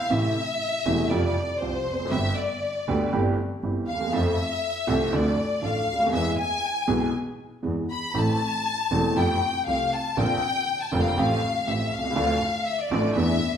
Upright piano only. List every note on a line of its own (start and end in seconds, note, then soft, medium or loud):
0.10 0.32 A1 medium
0.10 0.32 A2 medium
0.10 0.32 C3 medium
0.10 0.32 E3 medium
0.10 0.32 A3 medium
0.10 0.32 E4 medium
0.86 1.07 E1 medium
0.86 1.07 E2 medium
0.86 1.07 C3 medium
0.86 1.08 E3 medium
0.86 1.08 A3 medium
0.86 1.08 E4 medium
1.11 1.33 F2 medium
1.11 1.33 C3 medium
1.11 1.33 F3 medium
1.11 1.33 G3 medium
1.11 1.33 F4 medium
1.61 1.83 C2 soft
1.61 1.83 C3 soft
1.61 1.83 F3 soft
1.61 1.83 G3 soft
1.61 1.83 F4 soft
1.93 2.00 E2 soft
1.99 2.06 F2 medium
2.05 2.12 F#2 medium
2.11 2.33 G1 medium
2.11 2.33 G2 medium
2.11 2.33 D3 medium
2.11 2.33 G3 medium
2.11 2.33 B3 medium
2.11 2.33 G4 medium
2.88 3.09 D2 medium
2.88 3.09 D3 medium
2.88 3.09 G3 medium
2.88 3.10 B3 medium
2.88 3.10 G4 medium
3.13 3.34 G1 medium
3.13 3.34 G2 medium
3.13 3.34 E3 medium
3.13 3.34 G3 medium
3.13 3.34 C4 medium
3.13 3.34 G4 medium
3.63 3.85 G1 medium
3.63 3.85 G2 medium
3.63 3.84 E3 soft
3.63 3.84 G3 soft
3.63 3.85 C4 soft
3.63 3.85 G4 soft
3.95 4.01 D2 soft
4.00 4.07 D#2 medium
4.07 4.13 E2 medium
4.12 4.34 F2 medium
4.12 4.34 F3 medium
4.12 4.34 A3 medium
4.12 4.34 C4 medium
4.12 4.34 A4 medium
4.87 5.08 C2 medium
4.87 5.09 C3 medium
4.87 5.08 F3 medium
4.87 5.08 A3 medium
4.87 5.08 C4 medium
4.87 5.09 A4 medium
5.12 5.34 D2 medium
5.12 5.34 D3 medium
5.12 5.33 F3 medium
5.12 5.33 A3 medium
5.12 5.34 D4 medium
5.12 5.34 A4 medium
5.62 5.83 A1 medium
5.62 5.83 A2 medium
5.62 5.83 F3 soft
5.62 5.83 A3 soft
5.62 5.83 D4 soft
5.62 5.83 A4 soft
5.93 6.00 C#2 soft
6.00 6.06 D2 medium
6.06 6.12 D#2 medium
6.12 6.33 E2 medium
6.12 6.33 E3 medium
6.12 6.33 G#3 medium
6.12 6.33 B3 medium
6.12 6.33 G#4 medium
6.87 7.08 B1 medium
6.87 7.08 B2 medium
6.87 7.08 E3 medium
6.87 7.08 G#3 medium
6.87 7.08 B3 medium
6.87 7.08 G#4 medium
7.63 7.84 E2 soft
7.63 7.84 E3 soft
7.63 7.84 G#3 soft
7.63 7.84 B3 soft
7.63 7.84 G#4 soft
8.14 8.36 A1 medium
8.14 8.36 A2 medium
8.14 8.36 E3 medium
8.14 8.36 A3 medium
8.14 8.36 C4 medium
8.14 8.36 A4 medium
8.91 9.12 E1 medium
8.91 9.12 E2 medium
8.91 9.12 E3 medium
8.91 9.12 A3 medium
8.91 9.12 C4 medium
8.91 9.12 A4 medium
9.16 9.37 F2 medium
9.16 9.37 F3 medium
9.16 9.37 A3 medium
9.16 9.37 C4 medium
9.16 9.37 G4 medium
9.67 9.88 C2 medium
9.67 9.88 C3 medium
9.67 9.88 F3 soft
9.67 9.88 A3 soft
9.67 9.88 C4 soft
9.67 9.88 G4 soft
10.17 10.38 A#1 medium
10.17 10.38 A#2 medium
10.17 10.38 D3 medium
10.17 10.38 A#3 medium
10.17 10.38 C4 medium
10.17 10.39 F4 medium
10.92 11.13 F1 medium
10.92 11.13 F2 medium
10.92 11.13 D3 medium
10.92 11.13 A#3 medium
10.92 11.13 C4 medium
10.92 11.14 F4 medium
11.17 11.38 A1 medium
11.17 11.38 A2 medium
11.17 11.38 F3 medium
11.17 11.38 A3 medium
11.17 11.38 C4 medium
11.17 11.38 G4 medium
11.67 11.88 A1 medium
11.67 11.88 A2 medium
11.67 11.88 F3 soft
11.67 11.88 A3 soft
11.67 11.88 C4 soft
11.67 11.88 G4 soft
11.98 12.04 B1 soft
12.04 12.10 C2 medium
12.10 12.16 C#2 medium
12.15 12.37 D2 medium
12.15 12.37 D3 medium
12.15 12.37 F3 medium
12.15 12.37 A3 medium
12.15 12.37 D4 medium
12.15 12.37 A4 medium
12.91 13.12 A1 medium
12.91 13.12 A2 medium
12.91 13.12 F3 medium
12.91 13.12 A3 medium
12.91 13.12 D4 medium
12.91 13.12 A4 medium
13.15 13.36 E2 medium
13.15 13.36 E3 medium
13.15 13.36 B3 medium
13.15 13.36 D4 medium
13.15 13.36 G#4 medium